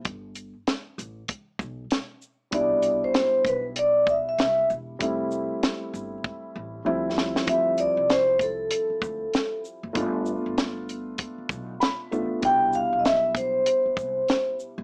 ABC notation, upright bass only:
X:1
M:4/4
L:1/16
Q:"Swing 16ths" 1/4=97
K:Ddor
V:1 name="Upright bass" clef=bass
G,,,4 z2 A,,,2 z2 B,,,2 z4 | C,,4 z2 B,,,6 C,,2 E,,,2 | F,,,4 z2 G,,,2 z2 A,,,2 D,,4 | D,,3 C,,4- C,, z2 D,,2 z3 ^F,,, |
G,,,3 G,,,4- G,,, z2 B,,,2 z2 A,,, z | C,,3 B,,,4- B,,, z2 C,,2 z3 E,,, |]